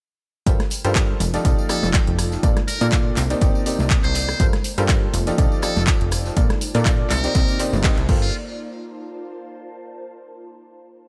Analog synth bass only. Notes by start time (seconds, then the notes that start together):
0.46 G1
0.85 G2
1.20 F1
1.45 C2
1.83 F1
2.08 F1
2.43 A#1
2.81 A#2
3.17 C2
3.42 G1
3.80 C2
4.04 C2
4.40 G1
4.78 G2
5.14 F1
5.38 C2
5.76 F1
6.01 F1
6.37 A#1
6.75 A#2
7.10 C2
7.35 C2
7.73 G1
7.98 C2
8.09 G1